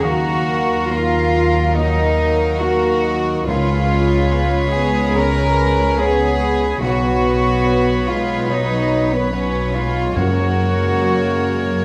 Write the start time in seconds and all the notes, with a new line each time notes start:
Already playing: A#4
0.01 D#2 D#3 F#3 A#3 F#4 A#4 F5 F#5 A#5
0.06 A#4
0.25 D#4
0.46 A#3
0.89 A#3 F4 A#4 F5 A#5
1.33 D#4
1.56 A#3
1.74 D#3 F#3 A#3 D#4 F4 A#4 D#5 F5 A#5
1.99 D#4
2.20 A#3
2.60 A#3 F#4 A#4 F5 F#5 A#5
3.04 D#4 D#5
3.27 A#3
3.46 C#2 C#3 G#3 F4 B4 C#5 F5 B5
3.70 G#3
3.91 B3
4.12 G#4
4.31 B3 G#4 C#5
4.54 G#4
4.73 B3 G#4 G#5
5.15 C#3 B3 C#4 G#4 A#4 C#5 A#5
5.36 G#3
5.57 B3
5.78 G#4
5.97 B3 G#4 C#5 G#5 B5
6.42 G#3
6.63 B3
6.81 B1 B2 B3 F#4 B4 C#5 F#5 B5
7.05 F#3
7.47 B4
7.66 B3 B4 C#5
7.90 B4
8.07 G#3 F4 F5
8.31 B3
8.49 B2 F#3 B3 D#4 B4 C#5 D#5
8.71 F#3
8.92 B3
9.12 D#3 B3 B4
9.31 F#3 B3 C#4 B4 C#5 B5
9.54 B4
9.74 F#3 G#3 F4 F5
9.96 B3
10.16 F#2 G#3 A#3 F#4 A#4 C#5 F#5 G#5
10.37 C#3
10.58 A#3
10.79 G#4
11.01 A#3 G#4 C#5
11.22 G#4
11.43 C#3
11.65 A#3